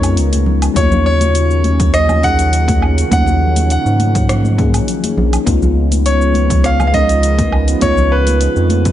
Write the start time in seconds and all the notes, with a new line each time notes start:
Already playing: F2 C#3 G#3 B3 C#4 D#4 F4 A#4 C#5
0.03 open hi-hat, low woodblock, shaker
0.17 C#2, open hi-hat, shaker
0.33 open hi-hat, high conga, shaker
0.46 low conga
0.62 open hi-hat, low woodblock, shaker
0.74 D#2 C#3 D#3 F#3 A#3 C#4 D#4 F4 C#5, kick, open hi-hat, high conga, shaker
0.92 low conga, shaker
1.06 C#5
1.21 open hi-hat, high conga, shaker
1.35 open hi-hat, shaker
1.51 shaker
1.64 open hi-hat, high conga
1.80 kick, open hi-hat, low conga, shaker
1.94 D#5, cross-stick, open hi-hat, shaker
2.09 high conga, low conga, low woodblock, shaker
2.21 F#3 A#3 C#4 D#4 G#4 F#5, kick, open hi-hat
2.39 open hi-hat, shaker
2.53 open hi-hat, shaker
2.68 kick, open hi-hat, high conga, shaker
2.82 low woodblock
2.98 open hi-hat, shaker
3.10 D#2 F3 F#3 A#3 C#4 D#4 F#5, kick, open hi-hat, high conga, shaker
3.26 low conga, shaker
3.56 open hi-hat, high conga, shaker
3.70 F#5, open hi-hat, shaker
3.86 G#2, shaker
4.00 open hi-hat, high conga
4.15 kick, open hi-hat, low conga, shaker
4.29 cross-stick, open hi-hat, shaker
4.44 high conga, shaker
4.57 F#3 A#3 C#4 D#4 G#4, kick, open hi-hat
4.74 open hi-hat, low woodblock, shaker
4.88 open hi-hat, shaker
5.04 open hi-hat, high conga, shaker
5.17 A#1, low conga
5.33 open hi-hat, low woodblock, shaker
5.45 C#2 C#3 F3 G#3 B3 C#4 D#4 F4, kick, open hi-hat, high conga, shaker
5.62 low conga, shaker
5.92 open hi-hat, high conga, shaker
6.06 C#5, open hi-hat, shaker
6.21 shaker
6.34 open hi-hat, high conga
6.50 kick, open hi-hat, low conga, shaker
6.64 F5, cross-stick, open hi-hat, shaker
6.80 high conga, low conga, low woodblock, shaker
6.87 F5
6.92 G#3 B3 C#4 D#4 A#4 D#5, kick, open hi-hat
7.09 open hi-hat, shaker
7.23 open hi-hat, shaker
7.39 kick, open hi-hat, high conga, shaker
7.52 low woodblock
7.68 open hi-hat, shaker
7.80 C#2 G#3 B3 C#4 D#4 F4 C#5, kick, open hi-hat, high conga, shaker
7.97 low conga, shaker
8.12 B4
8.27 open hi-hat, high conga, shaker
8.41 open hi-hat, shaker
8.56 F2, shaker
8.69 open hi-hat, high conga
8.85 kick, open hi-hat, low conga, shaker